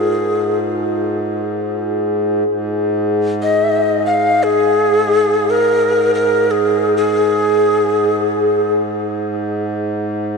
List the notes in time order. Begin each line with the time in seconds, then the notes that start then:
Already playing: G#2 F4 G#4
1.34 G#4
2.45 G#2
3.42 D#5
4.06 F5
4.43 G#4
5.50 A#4
6.15 A#4
6.51 G#4
6.97 G#4